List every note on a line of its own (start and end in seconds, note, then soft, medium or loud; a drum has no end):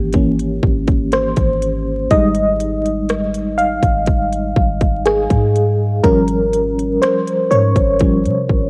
0.00 0.60 G#1 loud
0.00 0.13 E3 medium
0.00 0.14 A#3 medium
0.00 0.14 C#4 medium
0.00 2.13 G4 medium
0.13 0.59 E3 soft
0.13 0.59 A#3 soft
0.13 0.60 C#4 medium
0.13 kick medium
0.13 closed hi-hat medium
0.39 closed hi-hat medium
0.63 1.34 G#1 loud
0.63 kick medium
0.87 kick medium
0.87 closed hi-hat soft
1.12 2.14 C5 medium
1.12 cross-stick loud
1.12 closed hi-hat medium
1.36 2.08 G#1 loud
1.36 kick medium
1.36 closed hi-hat medium
1.62 closed hi-hat medium
2.10 3.79 G#1 loud
2.10 3.54 G3 medium
2.10 3.54 G#3 soft
2.10 3.55 D#4 medium
2.10 3.63 D#5 loud
2.10 kick loud
2.10 closed hi-hat medium
2.35 closed hi-hat medium
2.60 closed hi-hat medium
2.86 closed hi-hat medium
3.09 cross-stick loud
3.09 closed hi-hat medium
3.34 closed hi-hat medium
3.58 5.10 F5 loud
3.58 closed hi-hat medium
3.83 4.53 G#1 loud
3.83 kick medium
3.83 closed hi-hat soft
4.06 kick medium
4.06 closed hi-hat medium
4.33 closed hi-hat medium
4.56 5.27 G#1 loud
4.56 kick medium
4.81 kick medium
4.81 closed hi-hat soft
5.06 6.00 G#4 medium
5.06 cross-stick loud
5.06 closed hi-hat medium
5.30 6.01 G#2 loud
5.30 kick medium
5.30 closed hi-hat medium
5.56 closed hi-hat medium
6.04 6.98 G#1 loud
6.04 6.70 F3 medium
6.04 6.70 G3 soft
6.04 6.70 C#4 medium
6.04 7.05 A#4 loud
6.04 kick loud
6.04 closed hi-hat medium
6.28 closed hi-hat medium
6.53 closed hi-hat medium
6.79 closed hi-hat soft
7.02 7.16 C5 medium
7.02 cross-stick loud
7.02 closed hi-hat medium
7.27 closed hi-hat medium
7.51 7.75 G#2 loud
7.51 8.70 C#5 medium
7.51 closed hi-hat soft
7.76 8.26 G#1 loud
7.76 kick medium
7.76 closed hi-hat soft
7.99 8.46 F3 soft
7.99 8.46 G3 soft
7.99 8.46 C#4 medium
7.99 kick medium
7.99 closed hi-hat medium
8.25 8.48 C3 medium
8.25 closed hi-hat medium
8.49 8.70 G#1 loud
8.49 kick medium